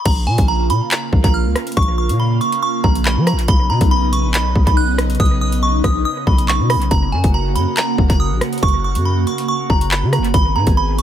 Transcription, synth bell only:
0.06 A#5
0.27 G#5
0.48 A#5
0.70 B5
0.91 A#5
1.24 A#5
1.34 F6
1.77 C#6
1.98 C#6
2.20 B5
2.41 C#6
2.63 C#6
2.84 A#5
3.05 B5
3.27 A#5
3.48 B5
3.70 A#5
3.91 B5
4.13 C#6
4.34 B5
4.67 B5
4.77 F#6
5.20 D#6
5.41 D#6
5.63 C#6
5.84 D#6
6.05 D#6
6.27 B5
6.48 C#6
6.70 B5
6.91 A#5
7.12 G#5
7.34 A#5
7.55 B5
7.77 A#5
8.10 A#5
8.20 D#6
8.63 C#6
8.84 C#6
9.05 B5
9.27 C#6
9.48 C#6
9.70 A#5
9.92 B5
10.13 A#5
10.34 B5
10.56 A#5
10.77 B5
10.99 C#6

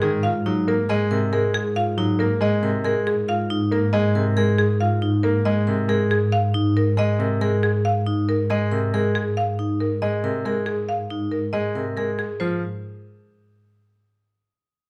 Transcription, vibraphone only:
0.25 F4
0.46 D#4
0.89 G#4
1.11 A#4
1.33 G#4
1.77 F4
1.98 D#4
2.42 G#4
2.63 A#4
2.85 G#4
3.28 F4
3.50 D#4
3.94 G#4
4.15 A#4
4.37 G#4
4.81 F4
5.02 D#4
5.45 G#4
5.67 A#4
5.89 G#4
6.54 D#4
6.97 G#4
7.20 A#4
7.41 G#4
8.07 D#4
8.50 G#4
8.71 A#4
8.94 G#4
9.59 D#4
10.02 G#4
10.24 A#4
10.46 G#4
11.10 D#4
11.54 G#4
11.75 A#4
11.97 G#4
12.40 F4

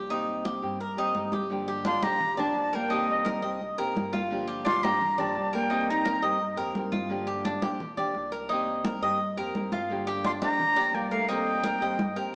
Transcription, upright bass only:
Already playing: C2
0.63 G2
1.15 G2
2.03 A#2
2.55 C2
3.42 C2
3.78 A1
3.95 G1
4.83 G2
5.35 C2
6.22 G2
6.57 F2
6.75 G2
7.63 A#2
8.14 C2
9.01 G2
9.37 F2
9.55 G2
10.42 D2
10.93 C2
11.81 G2
12.16 F2

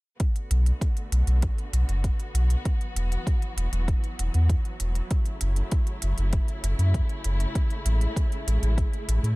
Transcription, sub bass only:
0.50 B1
1.11 B1
1.27 B1
1.72 B1
1.88 F#1
2.34 B1
2.95 E1
3.56 E1
3.72 E1
4.19 E1
4.34 E2
4.80 E1
5.41 F#1
6.02 F#1
6.18 F#1
6.63 F#1
6.78 F#2
7.24 F#1
7.85 A1
8.47 A1
8.62 A1
9.08 A1
9.23 A2

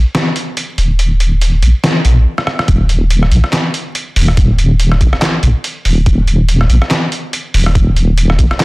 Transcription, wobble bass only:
0.78 D#1
1.62 A#1
2.05 A#1
2.68 D#1
3.32 A#1
4.16 D#1
5.01 A#1
5.43 A#1
5.85 D#1
6.06 D#1
6.70 A#1
7.54 D#1
8.39 A#1

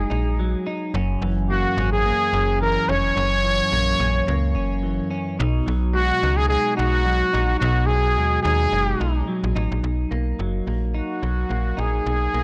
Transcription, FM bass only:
0.11 A#1
0.94 F#1
1.22 F#1
1.77 G#1
2.33 F#1
2.89 F1
3.17 F#1
3.72 A#1
4.00 A#1
4.28 C#2
4.56 F#1
5.40 B1
5.68 B1
6.23 C#2
6.79 B1
7.34 A#1
7.62 B1
8.16 D#2
8.45 D#2
8.72 F#1
9.01 B1
9.44 A#1
9.56 A1
9.72 A#1
9.84 B1
10.12 B1
10.39 F#1
10.67 A#1
11.23 B1
11.50 A#1
11.78 A#1
12.06 B1
12.34 B1

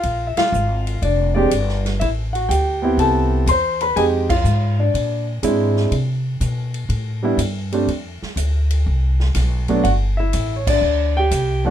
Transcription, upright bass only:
0.04 A#1
0.36 muted upright bass stroke
0.52 G#1
1.02 F1
1.51 G1
2.01 A1
2.49 D2
2.97 C2
3.46 E2
3.97 F2
4.44 G#2
4.94 A#2
5.43 G#2
5.91 C3
6.41 B2
6.89 A2
7.37 G2
7.87 F2
8.22 muted upright bass stroke
8.36 D2
8.86 C2
9.35 B1
9.84 G1
10.34 A1
10.81 D2
11.31 C2

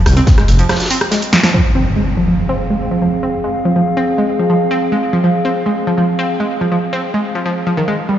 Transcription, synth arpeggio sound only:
0.17 C4
0.38 G#3
0.59 F3
0.69 F3
0.91 C4
1.12 G#3
1.33 F3
1.43 F3
1.54 F3
1.75 C4
1.96 G#3
2.17 F3
2.28 F3
2.49 C4
2.70 G#3
2.91 F3
3.02 F3
3.23 C4
3.44 G#3
3.65 F3
3.76 F3
3.97 C4
4.18 G#3
4.39 F3
4.50 F3
4.71 C4
4.92 G#3
5.13 F3
5.24 F3
5.45 C4
5.66 G#3
5.87 F3
5.98 F3
6.19 C4
6.40 G#3
6.61 F3
6.72 F3
6.93 C4
7.14 G#3
7.35 F3
7.45 F3
7.67 F3
7.77 D#3
7.88 G#3
8.09 G3

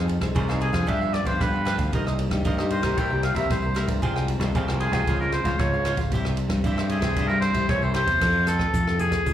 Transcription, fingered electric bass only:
Already playing: F2
0.20 C2
0.36 C2
0.73 F2
0.88 G2
1.25 G2
1.41 G2
1.77 D2
1.93 C2
2.30 G2
2.45 G2
2.82 C2
2.98 C2
3.35 C2
3.50 C2
3.87 G2
4.03 C2
4.39 C2
4.55 C2
4.92 C2
5.07 C#2
5.44 C#2
5.59 C#2
5.96 G#1
6.12 C2
6.48 G2
6.64 G2
7.01 C2
7.16 G2
7.53 C2
7.69 C2
8.06 E2
8.21 F2
8.74 F2
9.26 C#2

